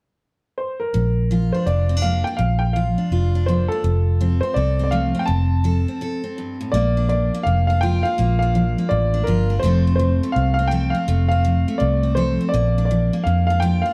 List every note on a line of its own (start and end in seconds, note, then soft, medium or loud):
0.58 0.81 C5 medium
0.80 1.55 A#4 medium
0.94 1.51 A#1 medium
0.94 1.27 A#2 medium
1.31 1.64 F3 medium
1.31 1.67 F4 medium
1.52 1.89 D4 soft
1.52 1.65 C5 medium
1.66 2.22 F1 medium
1.66 2.00 F2 medium
1.66 2.76 F4 soft
1.66 2.00 D5 medium
1.89 1.97 C4 soft
1.97 2.26 D4 soft
2.02 2.36 F3 medium
2.02 2.37 A#3 medium
2.02 2.23 F5 medium
2.24 2.38 D4 medium
2.24 2.39 G5 medium
2.37 2.95 A#1 medium
2.37 2.72 A#2 medium
2.37 2.61 F5 medium
2.59 2.74 G5 medium
2.73 3.09 F3 medium
2.73 3.12 F4 medium
2.73 3.49 F5 medium
2.98 3.34 D4 soft
3.11 3.67 F1 medium
3.11 3.45 F2 medium
3.11 4.57 F4 medium
3.35 3.71 D4 soft
3.46 3.82 F3 medium
3.46 3.83 A#3 medium
3.46 3.70 C5 medium
3.68 3.83 D4 medium
3.68 4.44 A4 medium
3.84 4.40 F1 medium
3.84 4.18 F2 medium
4.21 4.54 F3 medium
4.21 4.43 C4 medium
4.41 4.78 C4 medium
4.41 4.56 C5 medium
4.54 5.12 C2 medium
4.54 4.90 C3 medium
4.54 5.27 A4 medium
4.54 4.82 D5 medium
4.79 5.13 C4 medium
4.84 4.91 D5 medium
4.91 5.26 F3 medium
4.91 5.27 A3 medium
4.91 5.22 F5 medium
5.15 5.87 C4 medium
5.19 5.28 G5 medium
5.26 5.85 F1 medium
5.26 5.62 F2 medium
5.26 6.32 A5 medium
5.64 5.98 F3 medium
5.64 6.01 A4 medium
5.88 6.22 C4 soft
6.01 6.35 C3 medium
6.01 6.72 A4 medium
6.24 6.74 C4 soft
6.38 6.60 G2 medium
6.61 6.74 A2 medium
6.72 7.30 A#1 medium
6.72 7.07 A#2 medium
6.72 7.34 A#3 medium
6.72 7.06 D5 medium
6.97 7.69 D4 medium
7.09 7.43 F3 medium
7.09 7.47 D5 medium
7.34 8.18 A#3 medium
7.43 8.02 F1 medium
7.43 7.80 F2 medium
7.43 7.66 F5 medium
7.67 8.04 D4 medium
7.67 7.82 F5 medium
7.81 8.16 F3 medium
7.81 9.28 F4 medium
7.81 8.05 G5 loud
8.03 8.17 D4 medium
8.03 8.37 F5 loud
8.18 8.75 A#1 medium
8.18 8.52 A#2 medium
8.18 8.77 A#3 medium
8.39 9.13 D4 medium
8.39 8.92 F5 medium
8.55 8.89 F3 medium
8.78 9.62 A#3 soft
8.89 9.22 A1 medium
8.89 9.24 F2 medium
8.89 9.27 D5 medium
9.14 9.49 D4 medium
9.24 9.58 G1 medium
9.24 9.61 F3 medium
9.24 9.53 A#4 medium
9.28 9.65 F4 medium
9.50 9.62 D4 medium
9.59 10.19 F1 medium
9.59 9.97 F2 medium
9.59 9.94 C5 medium
9.64 9.99 F3 medium
9.64 10.23 A3 medium
9.64 9.87 C4 medium
9.64 10.71 A4 medium
9.87 10.58 C4 medium
9.96 10.33 F3 medium
9.96 10.35 C5 medium
10.23 11.07 A3 medium
10.32 10.92 C2 medium
10.32 10.70 C3 medium
10.32 10.52 F5 medium
10.54 10.70 F5 medium
10.59 10.93 C4 medium
10.68 11.05 F3 medium
10.68 10.93 G5 medium
10.72 11.07 A4 medium
10.90 11.27 F5 medium
10.95 11.30 C4 medium
11.08 11.64 F1 medium
11.08 11.42 F2 medium
11.08 11.67 A3 medium
11.29 12.02 C4 medium
11.29 11.81 F5 medium
11.45 11.78 F3 medium
11.68 12.52 A3 medium
11.78 12.37 C2 medium
11.78 12.14 C3 medium
11.78 12.17 D5 medium
12.03 12.39 C4 medium
12.15 12.50 F3 medium
12.15 12.52 A4 medium
12.15 12.43 C5 medium
12.41 12.54 C4 medium
12.49 12.84 D5 medium
12.54 13.10 A#1 medium
12.54 12.87 A#2 medium
12.54 13.13 A#3 medium
12.78 13.49 D4 medium
12.85 13.21 D5 medium
12.91 13.23 F3 medium
13.13 13.93 A#3 medium
13.24 13.82 F2 medium
13.24 13.60 F2 medium
13.24 13.45 F5 medium
13.47 13.84 D4 medium
13.47 13.60 F5 medium
13.60 13.93 F3 medium
13.60 13.93 F4 medium
13.60 13.82 G5 medium
13.82 13.93 D4 medium
13.82 13.93 F5 medium